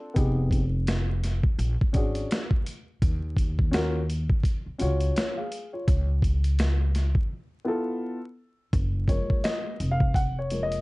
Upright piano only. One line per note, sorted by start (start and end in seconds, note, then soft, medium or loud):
0.00 0.10 F4 medium
0.00 0.11 A4 loud
0.14 0.59 B3 medium
0.14 0.60 D#4 medium
0.14 0.60 G4 medium
0.14 0.61 G#4 medium
1.93 2.38 C#4 medium
1.93 2.38 D4 medium
1.93 2.39 F#4 medium
1.93 2.40 G#4 medium
3.71 3.99 C#4 medium
3.71 4.00 F4 medium
3.71 4.00 F#4 medium
3.71 4.01 A#4 loud
4.78 5.32 C#4 medium
4.78 5.15 F4 medium
4.78 5.16 F#4 medium
4.78 5.15 C#5 medium
5.16 5.36 F4 medium
5.16 5.36 C#5 medium
5.37 5.71 G#4 medium
5.37 5.71 F5 medium
5.73 6.07 F4 medium
5.73 6.07 C#5 medium
7.64 8.18 B3 medium
7.64 8.18 E4 medium
7.64 8.19 F4 medium
7.64 8.19 A4 loud
9.08 10.12 F3 medium
9.08 10.12 G#3 soft
9.08 10.12 A#3 medium
9.08 9.46 C#5 medium
9.44 9.93 D#5 loud
9.91 10.16 F5 loud
10.15 10.38 F#5 loud
10.39 10.64 C#5 medium
10.51 10.81 F3 medium
10.51 10.81 G#3 soft
10.51 10.81 A#3 medium
10.63 10.81 D#5 medium